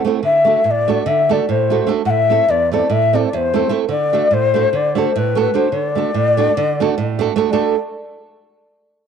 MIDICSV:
0, 0, Header, 1, 3, 480
1, 0, Start_track
1, 0, Tempo, 404585
1, 278, Time_signature, 9, 3, 24, 8
1, 10763, End_track
2, 0, Start_track
2, 0, Title_t, "Ney"
2, 0, Program_c, 0, 77
2, 294, Note_on_c, 0, 76, 107
2, 782, Note_off_c, 0, 76, 0
2, 782, Note_on_c, 0, 76, 112
2, 839, Note_on_c, 0, 74, 121
2, 851, Note_off_c, 0, 76, 0
2, 1271, Note_on_c, 0, 76, 127
2, 1289, Note_off_c, 0, 74, 0
2, 1572, Note_on_c, 0, 74, 107
2, 1589, Note_off_c, 0, 76, 0
2, 1784, Note_on_c, 0, 72, 95
2, 1802, Note_off_c, 0, 74, 0
2, 2243, Note_off_c, 0, 72, 0
2, 2443, Note_on_c, 0, 78, 117
2, 2492, Note_on_c, 0, 76, 127
2, 2504, Note_off_c, 0, 78, 0
2, 2966, Note_on_c, 0, 74, 115
2, 2984, Note_off_c, 0, 76, 0
2, 3230, Note_off_c, 0, 74, 0
2, 3237, Note_on_c, 0, 74, 111
2, 3469, Note_on_c, 0, 76, 127
2, 3487, Note_off_c, 0, 74, 0
2, 3730, Note_on_c, 0, 74, 103
2, 3748, Note_off_c, 0, 76, 0
2, 3877, Note_off_c, 0, 74, 0
2, 3886, Note_on_c, 0, 74, 68
2, 3976, Note_on_c, 0, 72, 101
2, 3994, Note_off_c, 0, 74, 0
2, 4423, Note_off_c, 0, 72, 0
2, 4634, Note_on_c, 0, 74, 114
2, 5145, Note_on_c, 0, 72, 122
2, 5162, Note_off_c, 0, 74, 0
2, 5640, Note_on_c, 0, 74, 116
2, 5658, Note_off_c, 0, 72, 0
2, 5921, Note_on_c, 0, 72, 98
2, 5939, Note_off_c, 0, 74, 0
2, 6145, Note_on_c, 0, 71, 92
2, 6163, Note_off_c, 0, 72, 0
2, 6383, Note_off_c, 0, 71, 0
2, 6412, Note_on_c, 0, 71, 107
2, 6587, Note_on_c, 0, 72, 99
2, 6605, Note_off_c, 0, 71, 0
2, 6799, Note_on_c, 0, 73, 101
2, 6817, Note_off_c, 0, 72, 0
2, 6965, Note_off_c, 0, 73, 0
2, 6965, Note_on_c, 0, 74, 101
2, 8739, Note_off_c, 0, 74, 0
2, 8904, Note_on_c, 0, 74, 95
2, 9180, Note_off_c, 0, 74, 0
2, 10763, End_track
3, 0, Start_track
3, 0, Title_t, "Nylon-string guitar"
3, 0, Program_c, 1, 24
3, 54, Note_on_c, 1, 57, 78
3, 72, Note_on_c, 1, 60, 56
3, 79, Note_on_c, 1, 64, 62
3, 86, Note_on_c, 1, 69, 79
3, 218, Note_off_c, 1, 57, 0
3, 227, Note_off_c, 1, 60, 0
3, 231, Note_off_c, 1, 64, 0
3, 234, Note_off_c, 1, 69, 0
3, 270, Note_on_c, 1, 50, 68
3, 530, Note_on_c, 1, 57, 68
3, 548, Note_on_c, 1, 62, 58
3, 556, Note_on_c, 1, 66, 57
3, 562, Note_on_c, 1, 69, 60
3, 660, Note_off_c, 1, 50, 0
3, 709, Note_off_c, 1, 57, 0
3, 718, Note_off_c, 1, 62, 0
3, 723, Note_off_c, 1, 66, 0
3, 724, Note_off_c, 1, 69, 0
3, 762, Note_on_c, 1, 45, 79
3, 1040, Note_on_c, 1, 57, 74
3, 1045, Note_on_c, 1, 62, 64
3, 1052, Note_on_c, 1, 66, 62
3, 1062, Note_on_c, 1, 69, 81
3, 1156, Note_off_c, 1, 45, 0
3, 1215, Note_off_c, 1, 57, 0
3, 1216, Note_off_c, 1, 62, 0
3, 1222, Note_off_c, 1, 66, 0
3, 1224, Note_off_c, 1, 69, 0
3, 1255, Note_on_c, 1, 50, 96
3, 1533, Note_on_c, 1, 57, 77
3, 1540, Note_on_c, 1, 62, 72
3, 1551, Note_on_c, 1, 66, 62
3, 1551, Note_on_c, 1, 69, 83
3, 1653, Note_off_c, 1, 50, 0
3, 1713, Note_off_c, 1, 57, 0
3, 1716, Note_off_c, 1, 62, 0
3, 1720, Note_off_c, 1, 69, 0
3, 1722, Note_off_c, 1, 66, 0
3, 1765, Note_on_c, 1, 45, 85
3, 2019, Note_on_c, 1, 57, 72
3, 2024, Note_on_c, 1, 62, 64
3, 2033, Note_on_c, 1, 66, 71
3, 2041, Note_on_c, 1, 69, 85
3, 2123, Note_off_c, 1, 45, 0
3, 2183, Note_off_c, 1, 57, 0
3, 2183, Note_off_c, 1, 62, 0
3, 2190, Note_off_c, 1, 66, 0
3, 2194, Note_off_c, 1, 69, 0
3, 2213, Note_on_c, 1, 57, 74
3, 2218, Note_on_c, 1, 62, 74
3, 2232, Note_on_c, 1, 66, 74
3, 2240, Note_on_c, 1, 69, 86
3, 2383, Note_off_c, 1, 57, 0
3, 2385, Note_off_c, 1, 62, 0
3, 2393, Note_off_c, 1, 66, 0
3, 2395, Note_off_c, 1, 69, 0
3, 2436, Note_on_c, 1, 45, 84
3, 2726, Note_on_c, 1, 57, 57
3, 2733, Note_on_c, 1, 60, 62
3, 2738, Note_on_c, 1, 64, 68
3, 2747, Note_on_c, 1, 69, 73
3, 2827, Note_off_c, 1, 45, 0
3, 2893, Note_off_c, 1, 57, 0
3, 2896, Note_off_c, 1, 60, 0
3, 2898, Note_off_c, 1, 64, 0
3, 2903, Note_off_c, 1, 69, 0
3, 2948, Note_on_c, 1, 40, 81
3, 3221, Note_on_c, 1, 57, 67
3, 3232, Note_on_c, 1, 60, 60
3, 3236, Note_on_c, 1, 64, 65
3, 3245, Note_on_c, 1, 69, 81
3, 3335, Note_off_c, 1, 40, 0
3, 3391, Note_off_c, 1, 57, 0
3, 3396, Note_off_c, 1, 60, 0
3, 3399, Note_off_c, 1, 64, 0
3, 3400, Note_off_c, 1, 69, 0
3, 3435, Note_on_c, 1, 45, 96
3, 3716, Note_on_c, 1, 57, 64
3, 3718, Note_on_c, 1, 60, 72
3, 3728, Note_on_c, 1, 64, 60
3, 3737, Note_on_c, 1, 69, 92
3, 3829, Note_off_c, 1, 45, 0
3, 3889, Note_off_c, 1, 57, 0
3, 3889, Note_off_c, 1, 60, 0
3, 3895, Note_off_c, 1, 64, 0
3, 3900, Note_off_c, 1, 69, 0
3, 3954, Note_on_c, 1, 40, 91
3, 4194, Note_on_c, 1, 57, 77
3, 4200, Note_on_c, 1, 60, 77
3, 4210, Note_on_c, 1, 64, 68
3, 4218, Note_on_c, 1, 69, 87
3, 4303, Note_off_c, 1, 40, 0
3, 4355, Note_off_c, 1, 57, 0
3, 4358, Note_off_c, 1, 60, 0
3, 4363, Note_off_c, 1, 64, 0
3, 4367, Note_off_c, 1, 69, 0
3, 4382, Note_on_c, 1, 57, 72
3, 4390, Note_on_c, 1, 60, 76
3, 4393, Note_on_c, 1, 64, 67
3, 4400, Note_on_c, 1, 69, 84
3, 4552, Note_off_c, 1, 57, 0
3, 4556, Note_off_c, 1, 64, 0
3, 4557, Note_off_c, 1, 60, 0
3, 4558, Note_off_c, 1, 69, 0
3, 4610, Note_on_c, 1, 50, 76
3, 4897, Note_on_c, 1, 57, 71
3, 4902, Note_on_c, 1, 62, 70
3, 4906, Note_on_c, 1, 66, 57
3, 4917, Note_on_c, 1, 69, 71
3, 4999, Note_off_c, 1, 50, 0
3, 5063, Note_off_c, 1, 57, 0
3, 5063, Note_off_c, 1, 62, 0
3, 5067, Note_off_c, 1, 66, 0
3, 5072, Note_off_c, 1, 69, 0
3, 5110, Note_on_c, 1, 45, 77
3, 5384, Note_on_c, 1, 57, 66
3, 5389, Note_on_c, 1, 62, 61
3, 5398, Note_on_c, 1, 66, 70
3, 5408, Note_on_c, 1, 69, 82
3, 5499, Note_off_c, 1, 45, 0
3, 5556, Note_off_c, 1, 57, 0
3, 5557, Note_off_c, 1, 62, 0
3, 5563, Note_off_c, 1, 66, 0
3, 5568, Note_off_c, 1, 69, 0
3, 5609, Note_on_c, 1, 50, 83
3, 5874, Note_on_c, 1, 57, 86
3, 5881, Note_on_c, 1, 62, 66
3, 5893, Note_on_c, 1, 66, 76
3, 5905, Note_on_c, 1, 69, 86
3, 5999, Note_off_c, 1, 50, 0
3, 6052, Note_off_c, 1, 57, 0
3, 6053, Note_off_c, 1, 62, 0
3, 6060, Note_off_c, 1, 66, 0
3, 6067, Note_off_c, 1, 69, 0
3, 6116, Note_on_c, 1, 45, 96
3, 6350, Note_on_c, 1, 57, 75
3, 6358, Note_on_c, 1, 62, 62
3, 6365, Note_on_c, 1, 66, 68
3, 6372, Note_on_c, 1, 69, 93
3, 6466, Note_off_c, 1, 45, 0
3, 6515, Note_off_c, 1, 57, 0
3, 6519, Note_off_c, 1, 62, 0
3, 6523, Note_off_c, 1, 66, 0
3, 6526, Note_off_c, 1, 69, 0
3, 6570, Note_on_c, 1, 57, 70
3, 6579, Note_on_c, 1, 62, 71
3, 6585, Note_on_c, 1, 66, 67
3, 6586, Note_on_c, 1, 69, 76
3, 6728, Note_off_c, 1, 57, 0
3, 6733, Note_off_c, 1, 62, 0
3, 6736, Note_off_c, 1, 66, 0
3, 6736, Note_off_c, 1, 69, 0
3, 6787, Note_on_c, 1, 50, 69
3, 7063, Note_on_c, 1, 57, 62
3, 7076, Note_on_c, 1, 62, 58
3, 7087, Note_on_c, 1, 66, 65
3, 7094, Note_on_c, 1, 69, 75
3, 7168, Note_off_c, 1, 50, 0
3, 7226, Note_off_c, 1, 57, 0
3, 7233, Note_off_c, 1, 62, 0
3, 7239, Note_off_c, 1, 66, 0
3, 7240, Note_off_c, 1, 69, 0
3, 7289, Note_on_c, 1, 45, 76
3, 7560, Note_on_c, 1, 57, 85
3, 7569, Note_on_c, 1, 62, 75
3, 7571, Note_on_c, 1, 66, 75
3, 7579, Note_on_c, 1, 69, 87
3, 7669, Note_off_c, 1, 45, 0
3, 7725, Note_off_c, 1, 57, 0
3, 7726, Note_off_c, 1, 62, 0
3, 7729, Note_off_c, 1, 66, 0
3, 7733, Note_off_c, 1, 69, 0
3, 7795, Note_on_c, 1, 50, 110
3, 8069, Note_on_c, 1, 57, 89
3, 8076, Note_on_c, 1, 62, 80
3, 8082, Note_on_c, 1, 66, 86
3, 8091, Note_on_c, 1, 69, 92
3, 8170, Note_off_c, 1, 50, 0
3, 8227, Note_off_c, 1, 57, 0
3, 8230, Note_off_c, 1, 62, 0
3, 8233, Note_off_c, 1, 66, 0
3, 8238, Note_off_c, 1, 69, 0
3, 8277, Note_on_c, 1, 45, 95
3, 8528, Note_on_c, 1, 57, 92
3, 8530, Note_on_c, 1, 62, 82
3, 8543, Note_on_c, 1, 66, 69
3, 8553, Note_on_c, 1, 69, 99
3, 8623, Note_off_c, 1, 45, 0
3, 8681, Note_off_c, 1, 57, 0
3, 8681, Note_off_c, 1, 62, 0
3, 8690, Note_off_c, 1, 66, 0
3, 8691, Note_off_c, 1, 69, 0
3, 8729, Note_on_c, 1, 57, 90
3, 8735, Note_on_c, 1, 62, 75
3, 8742, Note_on_c, 1, 66, 73
3, 8754, Note_on_c, 1, 69, 101
3, 8884, Note_off_c, 1, 57, 0
3, 8885, Note_off_c, 1, 62, 0
3, 8890, Note_off_c, 1, 66, 0
3, 8896, Note_off_c, 1, 69, 0
3, 8930, Note_on_c, 1, 57, 82
3, 8935, Note_on_c, 1, 66, 73
3, 8935, Note_on_c, 1, 69, 96
3, 8937, Note_on_c, 1, 62, 71
3, 9195, Note_off_c, 1, 57, 0
3, 9195, Note_off_c, 1, 69, 0
3, 9196, Note_off_c, 1, 66, 0
3, 9198, Note_off_c, 1, 62, 0
3, 10763, End_track
0, 0, End_of_file